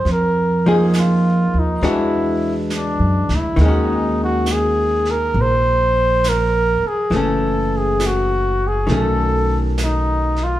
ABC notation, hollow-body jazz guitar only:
X:1
M:4/4
L:1/8
Q:"Swing" 1/4=68
K:Ebdor
V:1 name="Hollow-body jazz guitar"
z [F,B,EA]3 [=E,^G,=D^F]4 | [E,A,DG]8 | [_F,=A,D]4 [^D,A,^C]4 |]